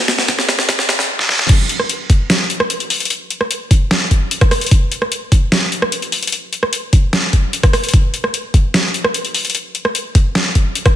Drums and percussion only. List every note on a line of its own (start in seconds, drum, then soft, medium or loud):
0.08 snare loud
0.08 closed hi-hat medium
0.18 snare medium
0.18 closed hi-hat soft
0.28 kick loud
0.28 snare medium
0.28 closed hi-hat medium
0.39 snare medium
0.49 snare medium
0.49 closed hi-hat medium
0.59 snare medium
0.69 kick loud
0.69 snare loud
0.69 closed hi-hat medium
0.79 snare medium
0.89 snare loud
0.89 closed hi-hat medium
0.99 snare medium
1.19 snare medium
1.29 snare medium
1.39 snare medium
1.49 kick loud
1.49 closed hi-hat medium
1.49 crash loud
1.69 closed hi-hat medium
1.80 cross-stick soft
1.90 closed hi-hat medium
2.10 kick medium
2.10 closed hi-hat medium
2.30 snare loud
2.30 closed hi-hat medium
2.50 closed hi-hat medium
2.60 cross-stick medium
2.70 closed hi-hat medium
2.80 closed hi-hat soft
2.90 open hi-hat loud
3.00 closed hi-hat medium
3.05 closed hi-hat medium
3.10 closed hi-hat medium
3.31 closed hi-hat medium
3.41 cross-stick soft
3.51 closed hi-hat medium
3.71 kick medium
3.71 closed hi-hat medium
3.91 snare loud
3.91 closed hi-hat medium
4.11 kick medium
4.11 closed hi-hat medium
4.31 closed hi-hat medium
4.41 kick loud
4.41 cross-stick medium
4.41 closed hi-hat soft
4.51 cross-stick medium
4.51 open hi-hat loud
4.61 closed hi-hat medium
4.66 closed hi-hat medium
4.71 kick loud
4.71 closed hi-hat medium
4.92 closed hi-hat medium
5.02 cross-stick medium
5.12 closed hi-hat medium
5.32 kick medium
5.32 closed hi-hat medium
5.52 snare loud
5.52 closed hi-hat medium
5.72 closed hi-hat medium
5.82 cross-stick medium
5.92 closed hi-hat medium
6.02 closed hi-hat soft
6.12 open hi-hat medium
6.23 closed hi-hat medium
6.27 closed hi-hat medium
6.32 closed hi-hat medium
6.53 closed hi-hat medium
6.63 cross-stick medium
6.73 closed hi-hat medium
6.93 kick medium
6.93 closed hi-hat medium
7.13 snare loud
7.13 closed hi-hat medium
7.33 kick medium
7.33 closed hi-hat soft
7.53 closed hi-hat medium
7.63 kick loud
7.63 cross-stick medium
7.63 closed hi-hat soft
7.73 cross-stick medium
7.73 open hi-hat medium
7.84 closed hi-hat medium
7.89 closed hi-hat medium
7.94 kick loud
7.94 closed hi-hat medium
8.14 closed hi-hat soft
8.24 cross-stick medium
8.34 closed hi-hat medium
8.54 kick medium
8.54 closed hi-hat medium
8.74 snare loud
8.74 closed hi-hat medium
8.94 closed hi-hat medium
9.04 cross-stick medium
9.14 closed hi-hat medium
9.25 closed hi-hat soft
9.35 open hi-hat medium
9.45 closed hi-hat soft
9.50 closed hi-hat medium
9.55 closed hi-hat medium
9.75 closed hi-hat soft
9.85 cross-stick medium
9.95 closed hi-hat medium
10.15 kick medium
10.15 closed hi-hat soft
10.35 snare loud
10.35 closed hi-hat medium
10.55 kick medium
10.55 closed hi-hat soft
10.75 closed hi-hat medium
10.86 kick loud
10.86 cross-stick medium
10.86 closed hi-hat soft